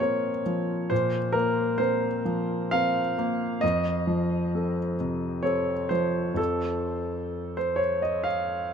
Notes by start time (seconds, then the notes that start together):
Already playing: A#2 F3 A#3 A#4 D#5
0.00 C4 A#4 C#5
0.46 F3
0.90 A#2 C5
1.32 A#3 A#4
1.78 C4 A#4 C5
2.25 F3
2.71 C4 A#4 F5
3.18 A#3
3.61 F2 D#5
4.07 F3
4.55 C4 A4
5.00 C3
5.43 C4 A4 C#5
5.89 F3 C5
6.34 F2 F3 C4 A4
7.57 C5
7.76 C#5
8.02 D#5
8.24 F5